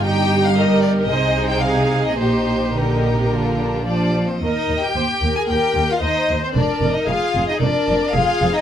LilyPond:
<<
  \new Staff \with { instrumentName = "Violin section" } { \time 4/4 \key ees \major \tempo 4 = 112 g''8. f''16 ees''8 d''8 ees''8. g''16 f''8. ees''16 | c''4 bes'2 d''8. c''16 | ees''8. g''4 aes''16 g''8. f''16 ees''8. c''16 | d''8. ees''16 f''8. ees''16 d''4 f''8. ees''16 | }
  \new Staff \with { instrumentName = "Viola section" } { \time 4/4 \key ees \major g'4 bes'4 c''4 aes'4 | g'2.~ g'8 r8 | bes'4 c''8 bes'4. c''4 | bes'4 aes'4 bes'4 aes'4 | }
  \new Staff \with { instrumentName = "Violin section" } { \time 4/4 \key ees \major <ees' g'>4 <ees' g'>4 <ees' aes'>2 | <ees' g'>4 <ees' g'>4 <d' f'>4 d'8. c'16 | ees'8. g'4 aes'16 g'8. f'16 ees'8. c'16 | d'8. ees'16 f'8. ees'16 d'4 f'8. ees'16 | }
  \new Staff \with { instrumentName = "Cello section" } { \clef bass \time 4/4 \key ees \major g,2 c2 | bes,4 d8. c16 d4 f4 | ees,8 ees,8 ees,8 ees,8 ees,8 ees,8 ees,8 ees,8 | f,8 f,8 f,8 f,8 f,8 f,8 f,8 f,8 | }
  \new Staff \with { instrumentName = "Double bass section" } { \clef bass \time 4/4 \key ees \major g,,2 c,2 | bes,,2.~ bes,,8 r8 | ees,8 ees,8 ees,8 ees,8 ees,8 ees,8 ees,8 ees,8 | f,,8 f,,8 f,,8 f,,8 f,,8 f,,8 f,,8 f,,8 | }
>>